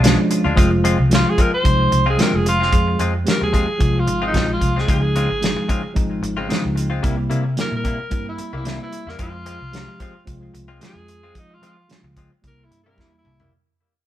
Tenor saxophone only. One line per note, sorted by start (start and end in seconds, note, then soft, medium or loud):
1.14 1.31 F4 medium
1.30 1.43 G#4 medium
1.41 1.53 A#4 medium
1.54 2.06 C5 loud
2.10 2.23 G#4 medium
2.21 2.37 A#4 medium
2.36 2.46 G#4 medium
2.48 2.99 F4 loud
3.30 3.42 A#4 medium
3.43 4.01 G#4 medium
3.99 4.23 F4 medium
4.27 4.51 D#4 medium
4.53 4.82 F4 medium
4.80 4.89 G#4 medium
4.92 5.94 G#4 medium
7.60 7.73 A#4 medium
7.76 8.27 A#4 medium
8.29 8.54 E4 medium
8.57 8.81 E4 medium
8.83 9.11 E4 medium
9.10 9.20 A#4 medium
9.22 10.26 F4 loud
10.86 11.40 G#4 medium
11.39 11.56 D#4 medium
11.54 11.64 F4 medium
11.66 11.90 F4 medium
12.47 12.66 A#4 medium
12.64 12.80 E4 medium
12.83 13.02 A#4 medium
13.01 13.17 E4 medium
13.18 13.52 E4 medium